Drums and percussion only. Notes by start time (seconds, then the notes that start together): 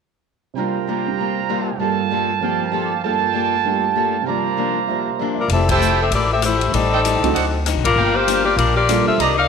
5.49 ride
5.69 kick, ride
5.81 hi-hat pedal
6.12 ride
6.42 cross-stick, hi-hat pedal, ride
6.61 ride
6.74 ride
7.05 hi-hat pedal, ride
7.24 ride
7.36 ride
7.66 cross-stick, hi-hat pedal, ride
7.85 kick, ride
8.28 hi-hat pedal, ride
8.58 ride
8.89 cross-stick, hi-hat pedal, ride
9.20 ride